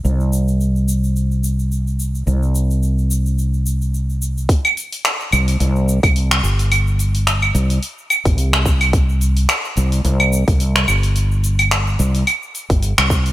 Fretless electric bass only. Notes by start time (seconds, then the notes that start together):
0.05 C2
2.27 C2
5.33 C2
5.60 C2
6.43 G1
7.55 C2
8.26 G1
8.38 C2
9.77 C2
10.04 C2
10.48 C2
10.88 G1
11.99 C2
12.70 G1
12.98 C2